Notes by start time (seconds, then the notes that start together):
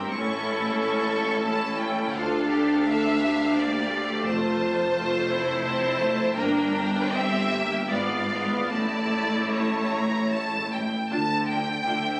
Already playing: C4 G4 A#4 G5
0.13 A1 A2 C#4 E4 A4 C#6
0.80 C#6
1.44 C#4 E4 A5
1.77 G5
2.12 D2 D4 F4 A4 F5
2.49 G4
2.87 A4 E5
3.24 G4
3.58 A#3 D5
3.93 A3
4.26 F1 F2 F4 C5 A5
4.97 A3 F4
5.31 E4
5.65 C4 A5
6.00 A3
6.33 G1 G2 A#3 D4 A#4 G5
6.72 D4
7.13 C4 G4 E5
7.52 A#3
7.90 G#1 G#2 B3 F4 D5 F5
8.30 B3
8.70 A1 A2 A3 E4 D5 A5
9.53 C#5 A5
9.93 A#5
10.32 A5
10.72 G5
11.10 D2 D3 D4 F4 A5
11.47 D4 F4 G5
11.84 D2 D3 D4 F4 E5